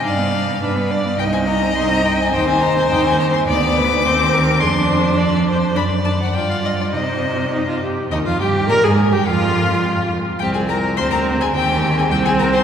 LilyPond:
<<
  \new Staff \with { instrumentName = "Violin" } { \time 2/4 \key c \minor \tempo 4 = 105 f''4. r8 | g''16 aes''16 bes''8 c'''16 bes''16 g''16 aes''16 | g''16 aes''16 bes''16 aes''16 g''16 aes''16 bes''16 c'''16 | d'''2 |
c'''4 r4 | b''8 a''16 fis''16 g''16 f''16 ees''16 d''16 | c''4. r8 | ees''16 f''16 g''8 bes''16 aes''8 g''16 |
f''4. r8 | g''16 aes''16 bes''8 c'''16 bes''8 aes''16 | g''8. aes''16 g''16 aes''16 bes''16 c'''16 | }
  \new Staff \with { instrumentName = "Violin" } { \time 2/4 \key c \minor d''4 b'8 d''8 | ees''2 | c''2 | d''8 b'8 c''8 bes'8 |
aes'8 c''8 d''8 c''8 | d''4 d''4 | ees''4. r8 | ees'16 f'16 g'8 bes'16 aes'8 g'16 |
f'4. r8 | g'16 aes'16 bes'8 c''16 bes'8 aes'16 | g'8. aes'16 g'16 aes'16 bes'16 c''16 | }
  \new Staff \with { instrumentName = "Viola" } { \time 2/4 \key c \minor d'16 b16 d'16 b16 d'16 b16 d'16 b16 | ees'16 c'16 ees'16 c'16 ees'16 c'16 ees'16 c'16 | ees'16 c'16 ees'16 c'16 ees'16 c'16 ees'16 c'16 | b4 c'4 |
d'2 | d'8 d'8 f'4 | ees'4 ees'16 f'16 g'8 | ees'16 f'16 g'8 bes'16 aes'8 g'16 |
f'4. r8 | c'4 c'4 | c'4 c'4 | }
  \new Staff \with { instrumentName = "Cello" } { \clef bass \time 2/4 \key c \minor g,4 g,4 | c,4 c,4 | ees,4 ees,4 | d,4 ees,4 |
f,2 | fis,4 g,4 | c4. r8 | ees,16 f,16 g,8 bes,16 aes,8 g,16 |
f,4. r8 | c,4 d,4 | ees,4 c,4 | }
>>